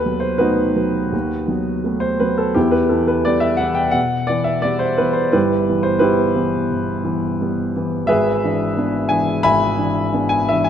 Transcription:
0.00 1.08 D#2 soft
0.00 0.23 B4 medium
0.06 0.38 F#3 soft
0.06 0.38 B3 soft
0.20 0.40 C5 medium
0.38 0.73 A3 soft
0.38 0.73 B3 soft
0.38 1.97 D#4 medium
0.38 1.97 F#4 medium
0.38 2.00 B4 medium
0.76 1.09 F#3 soft
0.76 1.08 B3 soft
1.12 2.51 D#2 soft
1.48 1.80 F#3 soft
1.48 1.81 B3 soft
1.84 2.16 A3 soft
1.84 2.17 B3 soft
2.00 2.19 C5 medium
2.20 2.53 F#3 soft
2.20 2.53 B3 soft
2.20 2.38 B4 medium
2.38 2.56 A4 medium
2.54 3.91 E2 soft
2.54 2.72 B3 medium
2.54 2.72 E4 medium
2.54 2.73 G4 medium
2.71 2.90 B4 medium
2.89 3.22 E3 soft
2.89 3.23 B3 soft
2.89 3.07 A4 medium
3.08 3.25 B4 medium
3.25 3.58 G3 soft
3.25 3.57 B3 soft
3.25 3.42 D5 medium
3.40 3.59 E5 medium
3.57 3.91 E3 soft
3.57 3.92 B3 soft
3.57 3.76 F#5 medium
3.75 3.94 G5 medium
3.91 4.51 B2 soft
3.91 4.28 F#5 medium
4.27 4.61 E3 soft
4.27 4.62 B3 soft
4.27 4.46 D5 medium
4.44 4.64 E5 medium
4.62 4.96 G3 soft
4.62 4.96 B3 soft
4.62 4.81 D5 medium
4.79 4.98 C5 medium
4.98 5.31 E3 soft
4.98 5.32 B3 soft
4.98 5.16 B4 medium
5.13 5.33 C5 medium
5.32 6.67 G1 medium
5.32 5.81 E4 medium
5.32 5.81 G4 medium
5.32 5.84 B4 medium
5.69 5.99 E3 soft
5.69 5.99 B3 soft
5.83 6.01 C5 medium
5.99 6.33 G3 soft
5.99 6.33 B3 soft
5.99 7.71 E4 medium
5.99 7.71 G4 medium
5.99 7.74 B4 medium
6.35 6.67 E3 soft
6.35 6.67 B3 soft
6.70 8.06 G1 soft
7.04 7.36 E3 soft
7.04 7.37 B3 soft
7.41 7.72 G3 soft
7.41 7.72 B3 soft
7.76 8.07 E3 soft
7.76 8.07 B3 soft
8.06 9.40 G#1 medium
8.06 9.08 G#4 medium
8.06 9.08 B4 medium
8.06 9.11 E5 medium
8.44 8.75 E3 soft
8.44 8.75 D4 soft
8.77 9.08 B3 soft
8.77 9.09 D4 soft
9.09 9.42 E3 soft
9.09 9.42 D4 soft
9.09 9.43 G#5 medium
9.43 10.70 G#1 medium
9.43 10.27 E5 medium
9.43 10.27 G#5 medium
9.43 10.31 B5 loud
9.78 10.10 E3 soft
9.78 10.11 D4 soft
10.13 10.45 B3 soft
10.13 10.45 D4 soft
10.29 10.48 G#5 medium
10.49 10.70 E3 soft
10.49 10.70 D4 soft
10.49 10.66 E5 medium
10.64 10.70 G#5 medium

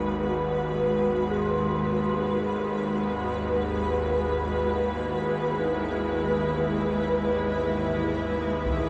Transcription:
0.00 8.89 G#1 medium
0.00 8.89 D#2 medium
0.00 8.89 G#3 medium
0.00 5.28 F#4 medium
0.00 8.89 B4 medium
1.31 8.89 G#4 medium
3.28 8.89 E4 medium
8.66 taiko medium

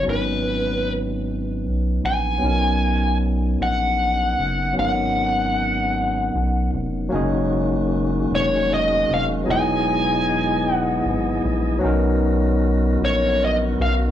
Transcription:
0.03 2.36 F#3 medium
0.03 2.36 B3 soft
0.03 2.37 C#4 medium
0.08 1.66 G#1 loud
0.08 2.38 D#4 soft
0.08 0.92 B4 medium
0.08 2.39 B4 medium
1.65 1.99 B1 medium
2.04 2.38 A#1 medium
2.04 3.17 G#5 medium
2.38 4.71 F#3 medium
2.38 4.72 B3 medium
2.38 4.73 C#4 medium
2.43 3.56 B1 loud
2.43 4.74 D#4 soft
2.43 4.74 A#4 medium
3.61 4.34 A#1 medium
3.61 4.74 F#5 loud
4.39 4.73 F#1 medium
4.73 7.06 F#3 medium
4.73 7.07 B3 medium
4.73 7.08 C#4 medium
4.78 6.30 G#1 loud
4.78 7.09 D#4 medium
4.78 7.09 A#4 medium
4.78 6.70 F#5 medium
6.35 6.70 B1 medium
6.74 7.08 F1 medium
7.09 9.45 D#3 medium
7.09 9.41 F#3 medium
7.09 11.78 G#3 medium
7.09 9.42 A#3 medium
7.09 9.45 A#3 medium
7.09 9.43 C#4 medium
7.09 9.45 C#4 medium
7.09 9.45 F#4 medium
7.13 8.26 F#1 loud
7.13 9.44 D#4 medium
7.13 9.45 G#4 medium
8.31 9.05 F1 loud
8.35 8.72 C#5 medium
8.74 9.11 D#5 medium
9.10 9.44 F1 loud
9.10 9.24 F5 loud
9.44 11.79 E3 medium
9.44 11.77 F#3 medium
9.44 14.11 B3 medium
9.44 11.78 B3 medium
9.44 11.79 D#4 medium
9.44 11.79 G#4 medium
9.44 11.79 D#5 medium
9.49 11.01 E1 loud
9.49 11.79 E4 medium
9.49 11.81 G#4 medium
9.49 10.75 G#5 loud
10.75 11.41 F#5 loud
11.06 11.40 G#1 medium
11.45 11.79 A#1 medium
11.79 14.11 D#3 medium
11.79 14.11 F#3 medium
11.79 14.11 B3 medium
11.79 14.11 C#4 medium
11.79 14.11 F#4 medium
11.79 14.11 A#4 medium
11.84 12.96 B1 loud
11.84 14.11 D#4 medium
11.84 14.11 A#4 medium
13.01 13.75 A#1 medium
13.01 13.43 C#5 loud
13.45 13.55 D#5 medium
13.80 14.11 B1 loud
13.80 13.92 F5 medium

